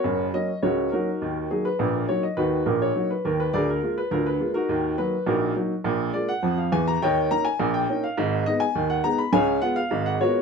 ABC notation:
X:1
M:2/4
L:1/16
Q:1/4=104
K:D#m
V:1 name="Upright piano"
[FAc]2 d2 [FAc]2 [DFA]2- | [DFA]2 G B2 A c d | [DFB]2 A c2 B A B | [GA=d] A2 B [=DEA] B2 [^DFA]- |
[DFA]2 B2 [DFA]2 z2 | z2 =d f2 e g a | [cd=g]2 a ^g2 =g2 e | z2 d g2 f a b |
[ceg]2 f e2 f [FAc]2 |]
V:2 name="Upright piano" clef=bass
[F,,,F,,]2 [F,A,C]2 [C,,C,]2 [F,A,C]2 | [D,,D,]2 [F,A,D]2 [A,,,A,,]2 [F,A,D]2 | [D,,D,]2 [A,,,A,,]2 [F,A,D]2 [D,,D,]2 | [=D,,=D,]2 [G,A,E]2 [D,,D,]2 [G,A,E]2 |
[D,,D,]2 [F,A,D]2 [A,,,A,,]2 [F,A,D]2 | [A,,,A,,]2 [G,A,E]2 [E,,E,]2 [=E,,=E,]2 | [D,,D,]2 [A,CD]2 [A,,,A,,]2 [A,CD]2 | [G,,,G,,]2 [G,B,D]2 [D,,D,]2 [G,B,D]2 |
[C,,C,]2 [G,B,E]2 [G,,,G,,]2 [G,B,E]2 |]